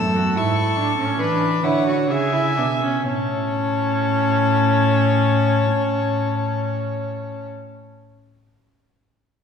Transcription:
0, 0, Header, 1, 5, 480
1, 0, Start_track
1, 0, Key_signature, 3, "major"
1, 0, Tempo, 825309
1, 700, Tempo, 895522
1, 1180, Tempo, 1000000
1, 1648, Time_signature, 4, 2, 24, 8
1, 4703, End_track
2, 0, Start_track
2, 0, Title_t, "Violin"
2, 0, Program_c, 0, 40
2, 0, Note_on_c, 0, 88, 103
2, 214, Note_on_c, 0, 85, 93
2, 222, Note_off_c, 0, 88, 0
2, 695, Note_on_c, 0, 83, 88
2, 704, Note_off_c, 0, 85, 0
2, 932, Note_on_c, 0, 78, 86
2, 940, Note_off_c, 0, 83, 0
2, 1172, Note_on_c, 0, 80, 88
2, 1180, Note_off_c, 0, 78, 0
2, 1640, Note_off_c, 0, 80, 0
2, 1643, Note_on_c, 0, 81, 99
2, 3759, Note_off_c, 0, 81, 0
2, 4703, End_track
3, 0, Start_track
3, 0, Title_t, "Violin"
3, 0, Program_c, 1, 40
3, 0, Note_on_c, 1, 69, 101
3, 678, Note_off_c, 1, 69, 0
3, 699, Note_on_c, 1, 71, 84
3, 933, Note_on_c, 1, 73, 86
3, 941, Note_off_c, 1, 71, 0
3, 1182, Note_on_c, 1, 76, 88
3, 1189, Note_off_c, 1, 73, 0
3, 1640, Note_off_c, 1, 76, 0
3, 1643, Note_on_c, 1, 73, 83
3, 3759, Note_off_c, 1, 73, 0
3, 4703, End_track
4, 0, Start_track
4, 0, Title_t, "Viola"
4, 0, Program_c, 2, 41
4, 0, Note_on_c, 2, 57, 77
4, 91, Note_on_c, 2, 66, 79
4, 100, Note_off_c, 2, 57, 0
4, 206, Note_on_c, 2, 64, 78
4, 215, Note_off_c, 2, 66, 0
4, 449, Note_on_c, 2, 62, 83
4, 458, Note_off_c, 2, 64, 0
4, 564, Note_off_c, 2, 62, 0
4, 568, Note_on_c, 2, 61, 83
4, 694, Note_on_c, 2, 62, 98
4, 703, Note_off_c, 2, 61, 0
4, 931, Note_on_c, 2, 64, 84
4, 939, Note_off_c, 2, 62, 0
4, 1049, Note_off_c, 2, 64, 0
4, 1053, Note_on_c, 2, 66, 80
4, 1174, Note_off_c, 2, 66, 0
4, 1177, Note_on_c, 2, 68, 84
4, 1288, Note_on_c, 2, 64, 90
4, 1295, Note_off_c, 2, 68, 0
4, 1400, Note_off_c, 2, 64, 0
4, 1403, Note_on_c, 2, 62, 76
4, 1442, Note_off_c, 2, 62, 0
4, 1525, Note_on_c, 2, 61, 81
4, 1641, Note_off_c, 2, 61, 0
4, 1643, Note_on_c, 2, 61, 100
4, 3760, Note_off_c, 2, 61, 0
4, 4703, End_track
5, 0, Start_track
5, 0, Title_t, "Cello"
5, 0, Program_c, 3, 42
5, 0, Note_on_c, 3, 42, 88
5, 207, Note_off_c, 3, 42, 0
5, 211, Note_on_c, 3, 44, 77
5, 446, Note_off_c, 3, 44, 0
5, 449, Note_on_c, 3, 45, 74
5, 693, Note_off_c, 3, 45, 0
5, 696, Note_on_c, 3, 52, 90
5, 929, Note_off_c, 3, 52, 0
5, 932, Note_on_c, 3, 50, 86
5, 1179, Note_on_c, 3, 49, 92
5, 1186, Note_off_c, 3, 50, 0
5, 1410, Note_on_c, 3, 47, 83
5, 1417, Note_off_c, 3, 49, 0
5, 1644, Note_off_c, 3, 47, 0
5, 1647, Note_on_c, 3, 45, 92
5, 3763, Note_off_c, 3, 45, 0
5, 4703, End_track
0, 0, End_of_file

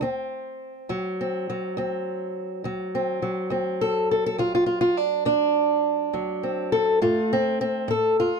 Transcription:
0, 0, Header, 1, 2, 480
1, 0, Start_track
1, 0, Tempo, 582977
1, 19, Time_signature, 12, 3, 24, 8
1, 6914, End_track
2, 0, Start_track
2, 0, Title_t, "Steel-string acoustic guitar"
2, 0, Program_c, 0, 25
2, 6, Note_on_c, 0, 38, 71
2, 19, Note_on_c, 0, 60, 57
2, 445, Note_off_c, 0, 38, 0
2, 735, Note_on_c, 0, 38, 76
2, 740, Note_on_c, 0, 54, 55
2, 991, Note_off_c, 0, 60, 0
2, 994, Note_on_c, 0, 60, 55
2, 1169, Note_off_c, 0, 38, 0
2, 1229, Note_off_c, 0, 54, 0
2, 1232, Note_on_c, 0, 54, 58
2, 1457, Note_on_c, 0, 38, 72
2, 1462, Note_off_c, 0, 60, 0
2, 1466, Note_on_c, 0, 60, 55
2, 1890, Note_off_c, 0, 38, 0
2, 2174, Note_off_c, 0, 54, 0
2, 2175, Note_on_c, 0, 38, 60
2, 2184, Note_on_c, 0, 54, 54
2, 2417, Note_off_c, 0, 60, 0
2, 2427, Note_on_c, 0, 60, 60
2, 2609, Note_off_c, 0, 38, 0
2, 2644, Note_off_c, 0, 54, 0
2, 2654, Note_on_c, 0, 54, 56
2, 2874, Note_off_c, 0, 60, 0
2, 2884, Note_on_c, 0, 38, 72
2, 2893, Note_on_c, 0, 60, 49
2, 3140, Note_on_c, 0, 69, 83
2, 3323, Note_off_c, 0, 38, 0
2, 3377, Note_off_c, 0, 69, 0
2, 3387, Note_on_c, 0, 69, 73
2, 3503, Note_off_c, 0, 69, 0
2, 3511, Note_on_c, 0, 69, 83
2, 3610, Note_on_c, 0, 38, 70
2, 3613, Note_off_c, 0, 69, 0
2, 3616, Note_on_c, 0, 65, 82
2, 3734, Note_off_c, 0, 65, 0
2, 3744, Note_on_c, 0, 65, 80
2, 3830, Note_off_c, 0, 65, 0
2, 3840, Note_on_c, 0, 65, 69
2, 3949, Note_off_c, 0, 65, 0
2, 3959, Note_on_c, 0, 65, 85
2, 4046, Note_off_c, 0, 38, 0
2, 4094, Note_off_c, 0, 65, 0
2, 4094, Note_on_c, 0, 62, 85
2, 4321, Note_off_c, 0, 62, 0
2, 4325, Note_on_c, 0, 38, 68
2, 4331, Note_on_c, 0, 62, 86
2, 4764, Note_off_c, 0, 38, 0
2, 5044, Note_off_c, 0, 54, 0
2, 5050, Note_on_c, 0, 38, 62
2, 5054, Note_on_c, 0, 54, 42
2, 5287, Note_off_c, 0, 60, 0
2, 5297, Note_on_c, 0, 60, 45
2, 5486, Note_off_c, 0, 38, 0
2, 5532, Note_off_c, 0, 62, 0
2, 5535, Note_on_c, 0, 69, 87
2, 5749, Note_off_c, 0, 60, 0
2, 5776, Note_off_c, 0, 54, 0
2, 5776, Note_off_c, 0, 69, 0
2, 5777, Note_on_c, 0, 45, 77
2, 5781, Note_on_c, 0, 65, 76
2, 5785, Note_on_c, 0, 57, 50
2, 6019, Note_off_c, 0, 65, 0
2, 6033, Note_on_c, 0, 60, 84
2, 6209, Note_off_c, 0, 45, 0
2, 6255, Note_off_c, 0, 60, 0
2, 6265, Note_on_c, 0, 60, 79
2, 6488, Note_on_c, 0, 45, 76
2, 6502, Note_off_c, 0, 60, 0
2, 6510, Note_on_c, 0, 69, 81
2, 6744, Note_off_c, 0, 69, 0
2, 6749, Note_on_c, 0, 65, 78
2, 6914, Note_off_c, 0, 45, 0
2, 6914, Note_off_c, 0, 57, 0
2, 6914, Note_off_c, 0, 65, 0
2, 6914, End_track
0, 0, End_of_file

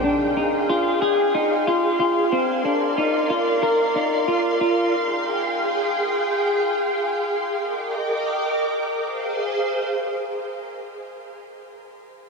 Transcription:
0, 0, Header, 1, 3, 480
1, 0, Start_track
1, 0, Tempo, 652174
1, 1706, Time_signature, 4, 2, 24, 8
1, 4106, Tempo, 668896
1, 5546, Tempo, 711744
1, 6986, Tempo, 763359
1, 8603, End_track
2, 0, Start_track
2, 0, Title_t, "String machine"
2, 0, Program_c, 0, 50
2, 0, Note_on_c, 0, 68, 75
2, 0, Note_on_c, 0, 77, 68
2, 0, Note_on_c, 0, 79, 65
2, 0, Note_on_c, 0, 84, 86
2, 1675, Note_off_c, 0, 79, 0
2, 1686, Note_off_c, 0, 68, 0
2, 1707, Note_on_c, 0, 70, 75
2, 1710, Note_on_c, 0, 74, 70
2, 3607, Note_off_c, 0, 70, 0
2, 3609, Note_off_c, 0, 74, 0
2, 3627, Note_on_c, 0, 68, 80
2, 3627, Note_on_c, 0, 79, 60
2, 5518, Note_off_c, 0, 77, 0
2, 5519, Note_off_c, 0, 84, 0
2, 5529, Note_off_c, 0, 68, 0
2, 5529, Note_off_c, 0, 79, 0
2, 5549, Note_on_c, 0, 70, 72
2, 5551, Note_on_c, 0, 79, 64
2, 5551, Note_on_c, 0, 86, 77
2, 5552, Note_on_c, 0, 75, 62
2, 6486, Note_off_c, 0, 70, 0
2, 6487, Note_off_c, 0, 79, 0
2, 6487, Note_off_c, 0, 86, 0
2, 6488, Note_off_c, 0, 75, 0
2, 6494, Note_on_c, 0, 84, 80
2, 6495, Note_on_c, 0, 72, 65
2, 6496, Note_on_c, 0, 77, 64
2, 6497, Note_on_c, 0, 68, 78
2, 7453, Note_off_c, 0, 72, 0
2, 7453, Note_off_c, 0, 84, 0
2, 7454, Note_off_c, 0, 68, 0
2, 7454, Note_off_c, 0, 77, 0
2, 8603, End_track
3, 0, Start_track
3, 0, Title_t, "Clean electric guitar"
3, 0, Program_c, 1, 27
3, 29, Note_on_c, 1, 62, 58
3, 268, Note_off_c, 1, 62, 0
3, 271, Note_on_c, 1, 63, 64
3, 509, Note_off_c, 1, 63, 0
3, 511, Note_on_c, 1, 65, 70
3, 746, Note_off_c, 1, 65, 0
3, 749, Note_on_c, 1, 68, 75
3, 987, Note_off_c, 1, 68, 0
3, 991, Note_on_c, 1, 63, 68
3, 1228, Note_off_c, 1, 63, 0
3, 1232, Note_on_c, 1, 65, 70
3, 1462, Note_off_c, 1, 65, 0
3, 1471, Note_on_c, 1, 65, 65
3, 1708, Note_off_c, 1, 65, 0
3, 1709, Note_on_c, 1, 60, 76
3, 1946, Note_off_c, 1, 60, 0
3, 1949, Note_on_c, 1, 62, 54
3, 2187, Note_off_c, 1, 62, 0
3, 2191, Note_on_c, 1, 63, 67
3, 2428, Note_off_c, 1, 63, 0
3, 2429, Note_on_c, 1, 65, 63
3, 2667, Note_off_c, 1, 65, 0
3, 2671, Note_on_c, 1, 70, 69
3, 2908, Note_off_c, 1, 70, 0
3, 2910, Note_on_c, 1, 63, 64
3, 3146, Note_off_c, 1, 63, 0
3, 3149, Note_on_c, 1, 65, 72
3, 3383, Note_off_c, 1, 65, 0
3, 3392, Note_on_c, 1, 65, 62
3, 3629, Note_off_c, 1, 65, 0
3, 8603, End_track
0, 0, End_of_file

